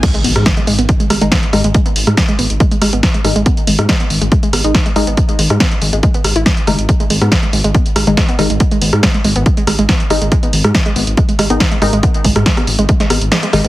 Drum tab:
CC |x---------------|----------------|----------------|----------------|
HH |xxoxxxoxxxoxxxox|xxoxxxoxxxoxxxox|xxoxxxoxxxoxxxox|xxoxxxoxxxoxxxox|
SD |---ro-----r-o-r-|---ro-----r-o-r-|---ro-----r-o-r-|---ro-----r-o-r-|
BD |o---o---o---o---|o---o---o---o---|o---o---o---o---|o---o---o---o---|

CC |----------------|----------------|----------------|----------------|
HH |xxoxxxoxxxoxxxox|xxoxxxoxxxoxxxox|xxoxxxoxxxoxxxox|xxoxxxoxxxoxxxox|
SD |---ro-----r-o-r-|---ro-----r-o-r-|---ro-----r-o-r-|---ror---or-o-r-|
BD |o---o---o---o---|o---o---o---o---|o---o---o---o---|o-o-o---o-------|